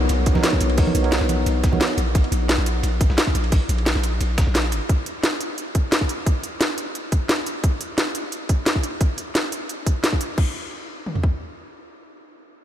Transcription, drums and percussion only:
0.09 closed hi-hat, ride
0.26 kick, closed hi-hat, ride
0.35 snare, high conga
0.43 snare, closed hi-hat, ride
0.53 kick
0.61 closed hi-hat, ride
0.70 ride
0.78 kick, closed hi-hat, open hi-hat
0.87 high conga
0.95 closed hi-hat, ride
1.04 ride
1.12 snare, closed hi-hat, ride
1.21 snare
1.29 closed hi-hat, ride, high conga
1.46 closed hi-hat, ride
1.63 kick, snare, closed hi-hat, ride
1.73 high conga
1.81 snare, closed hi-hat, ride
1.90 snare
1.98 closed hi-hat, ride
2.15 kick, closed hi-hat, ride
2.24 ride
2.32 closed hi-hat, ride
2.49 snare, closed hi-hat, ride
2.66 closed hi-hat, ride
2.83 closed hi-hat, ride
3.01 kick, closed hi-hat, ride
3.10 snare
3.18 snare, closed hi-hat, ride
3.27 kick
3.35 closed hi-hat, ride
3.44 ride
3.52 kick, closed hi-hat, open hi-hat
3.69 closed hi-hat, ride
3.78 ride
3.86 snare, closed hi-hat, ride
3.95 snare
4.03 closed hi-hat, ride
4.21 closed hi-hat, ride
4.38 kick, snare, closed hi-hat, ride
4.55 snare, closed hi-hat, ride
4.64 snare
4.72 closed hi-hat, ride
4.89 kick, closed hi-hat
5.06 closed hi-hat
5.24 snare, closed hi-hat
5.41 closed hi-hat
5.58 closed hi-hat
5.75 kick, closed hi-hat
5.92 snare, closed hi-hat
6.01 kick
6.09 closed hi-hat
6.26 kick, closed hi-hat
6.44 closed hi-hat
6.61 snare, closed hi-hat
6.78 closed hi-hat
6.95 closed hi-hat
7.12 kick, closed hi-hat
7.29 snare, closed hi-hat
7.46 closed hi-hat
7.64 kick, closed hi-hat
7.81 closed hi-hat
7.98 snare, closed hi-hat
8.15 closed hi-hat
8.32 closed hi-hat
8.49 kick, closed hi-hat
8.66 snare, closed hi-hat
8.76 kick
8.83 closed hi-hat
9.01 kick, closed hi-hat
9.18 closed hi-hat
9.35 snare, closed hi-hat
9.52 closed hi-hat
9.69 closed hi-hat
9.86 kick, closed hi-hat
10.04 snare, closed hi-hat
10.13 kick
10.21 closed hi-hat
10.38 kick, crash
11.06 mid tom
11.15 floor tom
11.24 kick

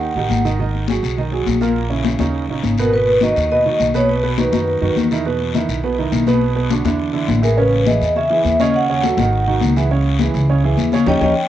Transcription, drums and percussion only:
0.00 high conga, long guiro
0.15 high conga
0.30 high conga, short guiro
0.45 short guiro
0.59 high conga, long guiro
0.73 high conga
0.88 high conga, short guiro
1.02 high conga, short guiro
1.17 high conga, long guiro
1.32 high conga
1.46 high conga, short guiro
1.61 high conga, short guiro
1.76 high conga, long guiro
1.91 high conga
2.05 high conga, short guiro
2.19 high conga, short guiro
2.34 high conga, long guiro
2.49 high conga
2.63 high conga, short guiro
2.78 high conga, short guiro
2.92 high conga, long guiro
3.07 high conga
3.21 high conga, short guiro
3.36 high conga, short guiro
3.50 high conga, long guiro
3.65 high conga
3.80 high conga, short guiro
3.94 high conga, short guiro
4.09 high conga, long guiro
4.23 high conga
4.38 high conga, short guiro
4.53 high conga, short guiro
4.68 high conga, long guiro
4.82 high conga
4.97 high conga, short guiro
5.11 high conga, short guiro
5.25 high conga, long guiro
5.41 high conga
5.54 high conga, short guiro
5.69 high conga, short guiro
5.84 high conga, long guiro
5.98 high conga
6.12 high conga, short guiro
6.27 high conga, short guiro
6.41 high conga, long guiro
6.56 high conga
6.70 high conga, short guiro
6.85 high conga, short guiro
6.99 high conga, long guiro
7.14 high conga
7.28 high conga, short guiro
7.43 short guiro
7.58 high conga, long guiro
7.72 high conga
7.86 high conga, short guiro
8.01 high conga, short guiro
8.15 high conga, long guiro
8.30 high conga
8.44 high conga, short guiro
8.59 high conga, short guiro
8.74 high conga, long guiro
8.89 high conga
9.03 high conga, short guiro
9.18 high conga, short guiro
9.33 high conga, long guiro
9.47 high conga
9.61 high conga, short guiro
9.76 high conga, short guiro
9.91 high conga, long guiro
10.05 high conga
10.19 high conga, short guiro
10.34 high conga, short guiro
10.49 high conga, long guiro
10.63 high conga
10.77 high conga, short guiro
10.92 high conga, short guiro
11.06 low conga, long guiro
11.22 low conga, long guiro

